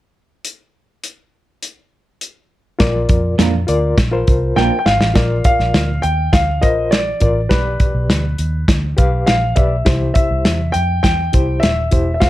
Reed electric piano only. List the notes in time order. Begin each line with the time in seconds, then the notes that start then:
2.79 A#2 F4 A#4 D5
3.67 F4 A#4 D5
4.11 F4 A#4 C5
5.14 A#2 F4 A#4 D5
6.61 F4 A#4 C5
7.21 F4 A#4 D5
7.50 B2 G4 B4 D5
8.97 G4 B4 F5
9.55 G4 B4 D5
9.85 C3 E4 G4 C5
11.33 E4 G4 C5
11.91 E4 G4 C5
12.20 F4 G#4 C5